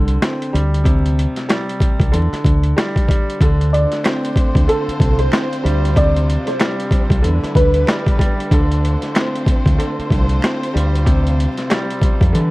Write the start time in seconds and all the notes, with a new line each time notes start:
Already playing: C2 D3 C4
0.08 closed hi-hat
0.22 C4, cross-stick, snare, closed hi-hat
0.42 closed hi-hat
0.53 D2 G3, closed hi-hat
0.74 closed hi-hat
0.84 C3, kick, closed hi-hat
1.06 closed hi-hat
1.19 closed hi-hat
1.36 snare, closed hi-hat
1.49 G3, cross-stick, snare, closed hi-hat
1.69 closed hi-hat
1.80 kick, closed hi-hat
2.00 C2, kick, closed hi-hat
2.11 E2 D3, closed hi-hat
2.33 muted fingered electric bass stroke, snare, closed hi-hat
2.44 D2, kick, closed hi-hat
2.63 closed hi-hat
2.76 G3, cross-stick, snare, closed hi-hat
2.96 kick, closed hi-hat
3.08 G3, kick, closed hi-hat
3.30 closed hi-hat
3.39 D2 D3 A3 C4 D4 F4 C5, kick, closed hi-hat
3.61 closed hi-hat
3.73 D5, closed hi-hat
3.92 snare, closed hi-hat
4.04 C4, finger snap, cross-stick, snare, closed hi-hat
4.25 closed hi-hat
4.36 kick, closed hi-hat
4.55 D2, kick, closed hi-hat
4.67 D3 A4, closed hi-hat
4.88 muted fingered electric bass stroke, closed hi-hat
5.00 C2, kick, closed hi-hat
5.19 C5, closed hi-hat
5.32 C4, finger snap, cross-stick, snare, closed hi-hat
5.53 closed hi-hat
5.63 D2 G3, closed hi-hat
5.85 closed hi-hat
5.95 C3 D5, kick, closed hi-hat
6.16 closed hi-hat
6.30 closed hi-hat
6.47 C5, snare, closed hi-hat
6.59 G3, finger snap, cross-stick, snare, closed hi-hat
6.80 closed hi-hat
6.91 kick, closed hi-hat
7.10 C2, kick, closed hi-hat
7.22 E2 D3 B3 E4 B4, closed hi-hat
7.43 muted fingered electric bass stroke, snare, closed hi-hat
7.55 D2 B4, kick, closed hi-hat
7.74 closed hi-hat
7.87 G3, finger snap, cross-stick, snare, closed hi-hat
8.07 kick, closed hi-hat
8.19 G3, kick, closed hi-hat
8.40 closed hi-hat
8.50 D2 D3 A3 C4 F4 C5, kick, closed hi-hat
8.72 closed hi-hat
8.85 closed hi-hat
9.02 snare, closed hi-hat
9.15 C4, finger snap, cross-stick, snare, closed hi-hat
9.35 closed hi-hat
9.46 kick, closed hi-hat
9.66 D2, kick, closed hi-hat
9.78 D3, closed hi-hat
9.99 muted fingered electric bass stroke, closed hi-hat
10.11 C2, kick, closed hi-hat
10.29 closed hi-hat
10.42 C4, finger snap, cross-stick, snare, closed hi-hat
10.63 closed hi-hat
10.74 D2 G3, closed hi-hat
10.96 closed hi-hat
11.05 C3, kick, closed hi-hat
11.27 closed hi-hat
11.40 closed hi-hat
11.58 snare, closed hi-hat
11.70 G3, finger snap, cross-stick, snare, closed hi-hat
11.90 closed hi-hat
12.02 kick, closed hi-hat
12.21 F2, kick, closed hi-hat
12.33 D3 E3 B3 E4 B4, closed hi-hat